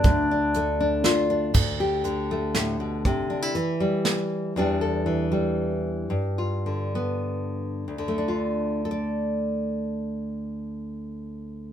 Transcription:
0.00 1.55 D3 medium
0.00 0.31 D4 soft
0.00 1.26 D4 medium
0.00 closed hi-hat medium
0.04 1.00 D2 medium
0.04 1.53 D2 medium
0.04 kick medium
0.31 0.79 D4 soft
0.54 1.52 A3 medium
0.54 closed hi-hat medium
0.81 1.29 D4 medium
1.04 1.52 F4 medium
1.04 snare medium
1.04 closed hi-hat soft
1.30 1.52 D4 medium
1.54 3.05 D2 medium
1.54 kick medium
1.54 crash medium
1.80 3.02 G4 soft
2.04 3.55 D3 medium
2.04 closed hi-hat soft
2.31 3.03 A3 medium
2.55 2.80 A2 medium
2.55 snare medium
2.55 closed hi-hat soft
2.80 3.05 B2 soft
3.05 3.56 C3 medium
3.05 kick medium
3.05 closed hi-hat soft
3.30 3.42 D4 soft
3.42 4.55 E4 soft
3.55 4.52 E3 medium
3.55 closed hi-hat soft
3.80 4.57 G3 soft
4.05 snare medium
4.05 closed hi-hat soft
4.56 6.08 E2 medium
4.56 5.05 E3 soft
4.56 5.31 G3 medium
4.56 8.08 D4 medium
4.56 4.81 G4 medium
4.81 6.08 A4 soft
5.06 6.08 E3 medium
5.32 6.95 G3 soft
6.10 7.84 G2 medium
6.38 7.84 F4 soft
6.66 7.97 D3 soft
6.95 7.84 B3 soft
7.88 11.73 D2 soft
7.98 11.73 D3 soft
8.08 11.73 A3 soft
8.18 8.85 D4 soft
8.28 8.91 F4 soft
8.85 11.73 A4 soft
8.91 11.73 D5 soft

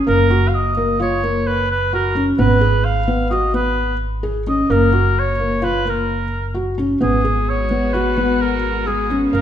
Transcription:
0.07 2.35 F#1 medium
0.07 0.26 A#3 medium
0.07 0.50 A#4 medium
0.30 0.69 F#4 medium
0.48 0.56 F5 soft
0.55 1.00 D#5 medium
0.77 0.96 A#3 medium
1.00 1.19 F4 medium
1.00 1.49 C#5 medium
1.23 1.62 A#3 medium
1.47 1.70 B4 medium
1.71 1.92 B4 medium
1.93 2.12 F#4 medium
1.93 2.26 A#4 medium
2.15 2.35 C#4 medium
2.38 4.66 G#1 medium
2.38 2.58 B3 medium
2.38 2.86 B4 medium
2.61 3.00 G#4 medium
2.85 3.30 F5 medium
3.08 3.27 B3 medium
3.31 3.50 F#4 medium
3.31 3.52 D#5 medium
3.54 3.93 B3 medium
3.54 3.98 B4 medium
4.23 4.43 G#4 medium
4.47 4.66 C#4 medium
4.47 4.73 D#5 medium
4.70 6.97 F#1 medium
4.70 4.89 A#3 medium
4.70 5.21 A#4 medium
4.93 5.31 F#4 medium
5.19 5.66 C#5 medium
5.40 5.59 A#3 medium
5.62 5.82 F4 medium
5.62 5.91 B4 medium
5.85 6.24 A#3 medium
5.85 6.57 A#4 medium
6.54 6.74 F#4 medium
6.78 6.97 C#4 medium
7.01 9.30 G#1 medium
7.01 9.30 G#3 medium
7.01 7.20 B3 medium
7.01 9.30 B3 medium
7.01 9.30 F#4 medium
7.01 7.51 G#4 medium
7.24 7.63 G#4 medium
7.50 7.95 C#5 medium
7.71 7.90 B3 medium
7.94 8.13 F#4 medium
7.94 8.42 B4 medium
8.17 8.56 B3 medium
8.41 8.89 A#4 medium
8.87 9.06 G#4 medium
8.87 9.22 G#4 medium
9.10 9.29 C#4 medium
9.32 9.41 F#1 medium
9.32 9.41 F#3 medium
9.32 9.41 A#3 medium
9.32 9.41 A#4 medium
9.32 9.41 F5 medium
9.32 9.41 A#5 medium

